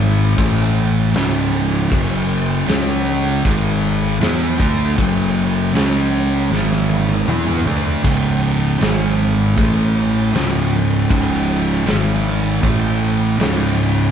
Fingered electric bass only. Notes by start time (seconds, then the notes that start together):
Already playing: G#1
0.38 A1
1.13 C#1
1.91 F#1
2.68 C#2
3.45 G#1
4.21 E2
4.60 D2
4.98 F#1
5.74 C#2
6.50 G#1
7.28 E2
7.66 D2
8.05 C#1
8.81 G#1
9.57 A1
10.33 C#1
11.11 C#1
11.86 G#1
12.63 A1
13.39 C#1